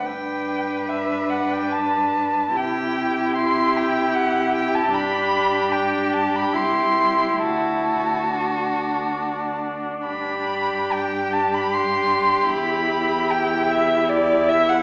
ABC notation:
X:1
M:3/4
L:1/16
Q:1/4=74
K:G
V:1 name="Violin"
g4 e2 f g a4 | g4 c'2 g2 f2 g a | b4 g2 a b c'4 | a8- a2 z2 |
b4 g2 a b c'4 | b4 g2 e2 d2 e f |]
V:2 name="Violin"
B12 | G12- | G12 | F8- F3 z |
G12- | G12 |]
V:3 name="Viola"
D12 | E12 | D8 E4- | E4 D8- |
D12 | E12 |]
V:4 name="Cello" clef=bass
G,,12 | C,12 | G,,8 C,,4 | D,,8- D,,3 z |
G,,12 | E,,12 |]